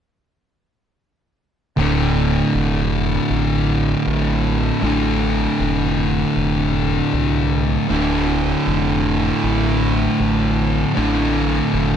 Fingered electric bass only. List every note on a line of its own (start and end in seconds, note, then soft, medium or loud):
1.77 2.40 D1 medium
2.54 3.17 F1 medium
3.30 3.93 A1 medium
4.06 4.69 A1 medium
4.82 5.46 A1 medium
5.59 6.22 F1 medium
6.36 6.99 F1 medium
7.13 7.76 C2 medium
7.90 8.53 D1 medium
8.67 9.29 F1 medium
9.43 10.06 A1 medium
10.20 10.83 A1 medium
10.97 11.60 A1 medium
11.73 11.97 F1 medium